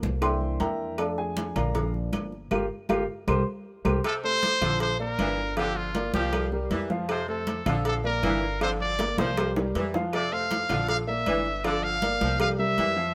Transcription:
Already playing: F3 A3 A#3
0.03 C2, high conga
0.21 E3 A#3 D4 C5 E5 G5 C6, cowbell, high conga, claves
0.41 high conga
0.60 F2 A#4 E5 G5 A#5, cowbell, high conga
0.98 F3 A3 D4 A4 D5 F5 A5, cowbell, high conga, claves
1.18 G#4 G#5, high conga
1.37 cowbell, high conga
1.56 A#1 A#4 D5 F5 A#5, cowbell, high conga, low conga, claves
1.75 F3 A#3 D4, cowbell, high conga, low conga
1.94 high conga
2.13 G1, cowbell, high conga, claves
2.32 high conga
2.51 G1 F4 G4 A#4, cowbell, high conga, claves
2.89 G1 F4 G4 A#4, cowbell, high conga, claves
3.28 C2 G4 A#4 C5, cowbell, high conga, claves
3.85 C2 G4 A#4 C5, cowbell, high conga, claves
4.04 C3 A4, cowbell, high conga, claves
4.23 A3 A4 C5, high conga
4.42 cowbell, high conga
4.61 A#1 D3 F3 F4 F5, cowbell, high conga, low conga, claves
4.80 C5, cowbell, high conga
5.00 A#3 A#4 D5, high conga
5.18 G1 D3 E3 D4 F5, cowbell, high conga, claves
5.38 high conga
5.57 D3 F3 F4 G4 F5, cowbell, high conga, claves
5.76 F4, high conga
5.95 A#3 A#4 D5, cowbell, high conga
6.14 C2 F3 G4, high conga
6.33 G3 G4 A#4, cowbell, high conga, claves
6.52 G3 G4 A#4, high conga
6.71 F2 E3, cowbell, high conga
6.90 F3 F4 F5, high conga
7.09 C3 C5, cowbell, high conga, claves
7.28 A3 A4 C5, high conga
7.47 cowbell, high conga
7.66 A#1 D3 F3 F4 F5, cowbell, high conga, low conga, claves
7.85 A4, cowbell, high conga
8.04 A#3 A#4 D5, high conga
8.23 G1 D3 E3 D4 F5, cowbell, high conga, claves
8.42 high conga
8.61 D3 F3 F4 C5 F5, cowbell, high conga, claves
8.80 D5, high conga
8.99 A#3 A#4 D5, cowbell, high bongo, high conga
9.18 C2 F3 C5, high bongo, high conga
9.37 G3 G4 A#4, cowbell, high bongo, high conga, claves
9.56 G3 G4 A#4, low bongo, high conga
9.75 F2 E3, cowbell, high conga
9.94 F3 F4 F5, low bongo, high conga
10.13 C3 D5, cowbell, high conga, claves
10.32 A3 A4 C5 F5, high conga
10.51 cowbell, high conga
10.69 A#1 D3 F3 F4 F5, cowbell, high conga, low conga, claves
10.88 F5, cowbell, high conga
11.08 A#3 A#4 D5 E5, high conga
11.26 G1 D3 E3 D4 D5, cowbell, high conga, claves
11.46 high conga
11.64 D3 F3 F4 D5 F5, cowbell, high conga, claves
11.84 F5, high conga
12.02 A#3 A#4 D5, cowbell, high conga
12.20 C2 F3, high conga
12.40 G3 G4 A#4 F5, cowbell, high conga, claves
12.59 G3 G4 A#4 E5, high conga
12.78 F2 E3, cowbell, high conga
12.96 F3 F4 F5

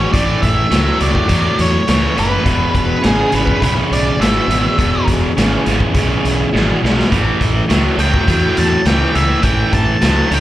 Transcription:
Already playing: E2 B2 B3 E4 G#4 B4 C#5
0.13 A1 A2 C#3 E3 A3 E4 A4 D5, kick, closed hi-hat
0.42 A1 E5, kick, closed hi-hat
0.70 C#2 A2 F#3, snare, closed hi-hat
0.99 C#2 A2 F#3 D5, closed hi-hat
1.15 kick
1.29 E2 A2 F#3, kick, closed hi-hat
1.59 E2 C#5, closed hi-hat
1.87 C#2 A2 E3 C#5, snare, closed hi-hat
2.16 F#1 A2 E3 B4, closed hi-hat
2.44 E1 E2 B2 G#3 B3 E4 G#4, kick, closed hi-hat
2.74 E1 B4, kick, closed hi-hat
3.03 G#1 E2 C#3 G#4, snare, closed hi-hat
3.32 G#1 E2 C#3 B4, closed hi-hat
3.47 kick
3.61 B1 E2 C#3 B4, kick, closed hi-hat
3.91 B1 D5, closed hi-hat
4.20 G#1 E2 B2 E5, snare, closed hi-hat
4.48 G#1 E2 B2, closed hi-hat
4.78 E1 E2 B2 G#3 B3 E4 G#4, kick, closed hi-hat
5.07 E1, kick, closed hi-hat
5.36 G#1 E2 C#3, snare, closed hi-hat
5.66 G#1 E2 C#3, closed hi-hat
5.80 kick
5.94 B1 E2 C#3, kick, closed hi-hat
6.25 B1, closed hi-hat
6.53 G#1 E2 B2, snare
6.83 B1 E2 B2, snare
7.00 snare
7.11 A1 A2 E3 A#3 D4 F4 A#4, kick, closed hi-hat
7.31 A3 C#4 E4 A4
7.41 A1, kick, closed hi-hat
7.69 C#2 A2 F#3, snare, closed hi-hat
7.97 C#2 A2 F#3 G5, closed hi-hat
8.14 kick
8.27 E2 A2 F#3, kick, closed hi-hat
8.57 E2 A5, closed hi-hat
8.85 C#2 A2 E3 G5, snare, closed hi-hat
9.14 C#2 A2 E3 E5, closed hi-hat
9.42 A1 A2 E3 A3 C#4 E4 G5, kick, closed hi-hat
9.73 A1 A5, kick, closed hi-hat
10.01 C#2 A2 F#3, snare, closed hi-hat
10.05 A5
10.31 C#2 A2 F#3 G5, closed hi-hat

